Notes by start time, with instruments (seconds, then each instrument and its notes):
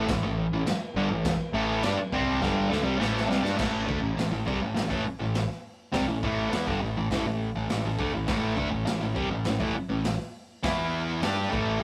0.07 picked electric bass A1, distorted electric guitar A2 E3, kick, snare, crash
0.23 picked electric bass A1, distorted electric guitar A2 E3
0.51 picked electric bass A1, distorted electric guitar A2 E3
0.65 muted picked electric bass stroke, muted distorted electric guitar stroke, snare, crash
0.94 picked electric bass G1, distorted electric guitar G2 D3
1.09 picked electric bass A1, distorted electric guitar A2 E3
1.25 kick, snare, crash
1.52 picked electric bass A1, distorted electric guitar A2 E3 A3
1.82 picked electric bass G2, distorted electric guitar G3 D4, snare, crash
1.96 muted picked electric bass stroke, muted distorted electric guitar stroke
2.12 picked electric bass C2, distorted electric guitar C3 G3 C4, kick
2.41 picked electric bass G1, distorted electric guitar G2 D3 G3, kick, snare
2.69 picked electric bass D2, distorted electric guitar D3 A3, snare
2.83 picked electric bass C2, distorted electric guitar C3 G3
2.98 picked electric bass A1, distorted electric guitar A2 E3 A3, snare
3.17 snare
3.27 picked electric bass C2, distorted electric guitar C3 G3
3.31 snare
3.42 picked electric bass G2, distorted electric guitar G3 D4, snare
3.56 picked electric bass A1, distorted electric guitar A2 E3 A3, kick, snare, crash
3.87 picked electric bass D2, distorted electric guitar D3 A3, kick
4.00 picked electric bass A1, distorted electric guitar A2 E3
4.17 picked electric bass A1, distorted electric guitar A2 E3, snare, open hi-hat
4.31 picked electric bass A1, distorted electric guitar A2 E3
4.46 picked electric bass C2, distorted electric guitar C3 G3, kick
4.62 picked electric bass A1, distorted electric guitar A2 E3
4.74 picked electric bass A1, distorted electric guitar A2 E3, snare, open hi-hat
4.88 picked electric bass A1, distorted electric guitar A2 E3, kick
5.06 muted distorted electric guitar stroke, muted picked electric bass stroke
5.19 picked electric bass A1, distorted electric guitar A2 E3
5.34 snare, open hi-hat
5.92 picked electric bass C2, distorted electric guitar C3 G3, kick, snare, open hi-hat
6.07 picked electric bass A1, distorted electric guitar A2 E3
6.23 picked electric bass A1, distorted electric guitar A2 E3 A3, kick
6.50 picked electric bass E2, distorted electric guitar E3 B3, snare, open hi-hat
6.67 picked electric bass G1, distorted electric guitar G2 D3, kick
6.81 picked electric bass A1, distorted electric guitar A2 E3
6.97 picked electric bass A1, distorted electric guitar A2 E3
7.10 picked electric bass A1, distorted electric guitar A2 E3, kick, snare, open hi-hat
7.25 picked electric bass A1, distorted electric guitar A2 E3
7.55 picked electric bass A1, distorted electric guitar A2 E3
7.69 picked electric bass A1, distorted electric guitar A2 E3, snare, open hi-hat
7.84 picked electric bass A1, distorted electric guitar A2 E3
7.98 picked electric bass D2, distorted electric guitar D3 A3, kick
8.13 picked electric bass A1, distorted electric guitar A2 E3
8.27 picked electric bass A1, distorted electric guitar A2 E3 A3, kick, snare, open hi-hat
8.57 picked electric bass D2, distorted electric guitar D3 A3, kick
8.71 picked electric bass A1, distorted electric guitar A2 E3
8.86 picked electric bass A1, distorted electric guitar A2 E3, snare, open hi-hat
9.01 picked electric bass A1, distorted electric guitar A2 E3
9.15 picked electric bass C2, distorted electric guitar C3 G3, kick
9.30 picked electric bass A1, distorted electric guitar A2 E3
9.44 picked electric bass A1, distorted electric guitar A2 E3, snare, open hi-hat
9.60 picked electric bass A1, distorted electric guitar A2 E3, kick
9.75 muted picked electric bass stroke, muted distorted electric guitar stroke
9.89 picked electric bass A1, distorted electric guitar A2 E3
10.04 snare, open hi-hat
10.63 picked electric bass E2, distorted electric guitar E3 B3 E4, kick, snare, open hi-hat
11.21 picked electric bass G2, distorted electric guitar G3 D4 G4, snare, open hi-hat
11.49 distorted electric guitar A2 E3 A3, kick
11.53 picked electric bass A1
11.80 distorted electric guitar C3